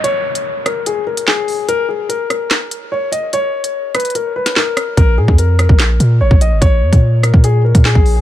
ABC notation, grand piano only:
X:1
M:4/4
L:1/8
Q:1/4=146
K:Bbphr
V:1 name="Grand piano"
d3 B A B A2 | B A B B3 d e | d3 c B c B2 | B A B B3 d e |
d3 B A B A2 |]